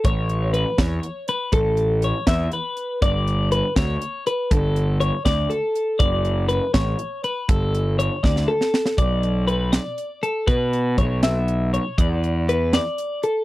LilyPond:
<<
  \new Staff \with { instrumentName = "Clean electric guitar" } { \time 6/8 \key g \lydian \tempo 4. = 80 cis''4 b'8 cis''4 b'8 | a'4 cis''8 e''8 b'4 | d''4 b'8 cis''4 b'8 | a'4 cis''8 d''8 a'4 |
d''4 b'8 cis''4 b'8 | a'4 cis''8 d''8 a'4 | d''4 b'8 d''4 a'8 | b'4 cis''8 e''4 cis''8 |
d''4 b'8 d''4 a'8 | }
  \new Staff \with { instrumentName = "Picked electric bass" } { \clef bass \time 6/8 \key g \lydian a,,4. e,8 r4 | a,,4. e,8 r4 | g,,4. d,8 r4 | g,,4. d,8 r4 |
fis,,4. a,,8 r4 | g,,4. d,8 r4 | b,,2 r4 | b,4 b,,2 |
e,2 r4 | }
  \new DrumStaff \with { instrumentName = "Drums" } \drummode { \time 6/8 <hh bd>8 hh8 hh8 <hh bd sn>8 hh8 hh8 | <hh bd>8 hh8 hh8 <hh bd sn>8 hh8 hh8 | <hh bd>8 hh8 hh8 <hh bd sn>8 hh8 hh8 | <hh bd>8 hh8 hh8 <hh bd sn>8 hh8 hh8 |
<hh bd>8 hh8 hh8 <hh bd sn>8 hh8 hh8 | <hh bd>8 hh8 hh8 <bd sn>16 sn8 sn16 sn16 sn16 | <hh bd>8 hh8 hh8 <hh sn>8 hh8 hh8 | <hh bd>8 hh8 <hh bd>8 <hh sn>8 hh8 hh8 |
<hh bd>8 hh8 hh8 <hh sn>8 hh8 hh8 | }
>>